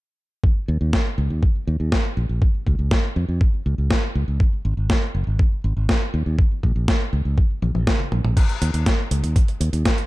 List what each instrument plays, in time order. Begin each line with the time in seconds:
0.44 kick
0.68 fingered electric bass D#2
0.81 fingered electric bass D#2
0.93 kick, snare
1.18 fingered electric bass C#2
1.30 fingered electric bass D#2
1.43 kick
1.67 fingered electric bass D#2
1.80 fingered electric bass D#2
1.92 kick, snare
2.17 fingered electric bass A#1
2.29 fingered electric bass A#1
2.42 kick
2.67 fingered electric bass C#2, kick
2.79 fingered electric bass C#2
2.91 kick, snare
3.16 fingered electric bass F2
3.29 fingered electric bass F2
3.41 kick
3.66 fingered electric bass C#2
3.78 fingered electric bass C#2
3.91 kick, snare
4.15 fingered electric bass C#2
4.28 fingered electric bass C#2
4.40 kick
4.65 fingered electric bass G#1
4.77 fingered electric bass G#1
4.90 kick, snare
5.15 fingered electric bass F#1
5.27 fingered electric bass G#1
5.39 kick
5.64 fingered electric bass G#1
5.77 fingered electric bass G#1
5.89 kick, snare
6.14 fingered electric bass D#2
6.26 fingered electric bass D#2
6.39 kick
6.63 fingered electric bass A#1, kick
6.76 fingered electric bass A#1
6.88 kick, snare
7.13 fingered electric bass C#2
7.25 fingered electric bass C#2
7.38 kick
7.62 fingered electric bass A#1, high tom
7.75 fingered electric bass A#1, high tom
7.87 kick, snare, mid tom
8.00 mid tom
8.12 fingered electric bass A#1, mid tom
8.24 fingered electric bass A#1, mid tom
8.37 kick, closed hi-hat, crash
8.49 closed hi-hat
8.62 fingered electric bass D#2, closed hi-hat
8.74 fingered electric bass D#2, closed hi-hat
8.86 kick, snare, closed hi-hat
9.11 fingered electric bass C#2, closed hi-hat
9.23 fingered electric bass D#2, closed hi-hat
9.36 kick, closed hi-hat
9.48 closed hi-hat
9.60 fingered electric bass D#2, closed hi-hat
9.73 fingered electric bass D#2, closed hi-hat
9.85 kick, snare, closed hi-hat
9.98 closed hi-hat